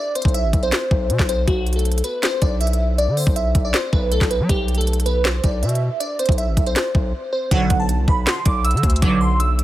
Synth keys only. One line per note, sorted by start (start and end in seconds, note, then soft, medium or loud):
0.00 0.14 D5 medium
0.15 0.33 C5 medium
0.34 0.61 E5 medium
0.63 1.25 C5 medium
1.29 1.46 C5 medium
1.47 1.74 F#4 loud
1.76 2.02 A4 medium
2.04 2.21 B4 medium
2.23 2.40 C5 medium
2.42 2.59 D5 medium
2.61 2.96 E5 medium
2.98 3.15 D5 medium
3.17 3.34 C5 medium
3.36 3.63 E5 medium
3.65 3.73 D5 medium
3.74 3.91 C5 medium
3.93 4.10 B4 medium
4.12 4.29 A4 medium
4.30 4.48 B4 medium
4.50 4.76 G4 loud
4.78 5.04 A4 medium
5.06 5.23 B4 medium
5.25 5.42 C5 medium
5.44 5.61 D5 medium
5.63 5.98 E5 medium
6.00 6.17 D5 medium
6.19 6.36 C5 medium
6.38 6.65 E5 medium
6.67 7.29 C5 medium
7.33 7.50 C5 medium
7.51 7.78 F#5 loud
7.80 8.06 A5 medium
8.08 8.25 B5 medium
8.27 8.44 C6 loud
8.45 8.63 D6 medium
8.65 9.00 E6 medium
9.02 9.19 D6 medium
9.21 9.38 C6 medium
9.40 9.64 E6 medium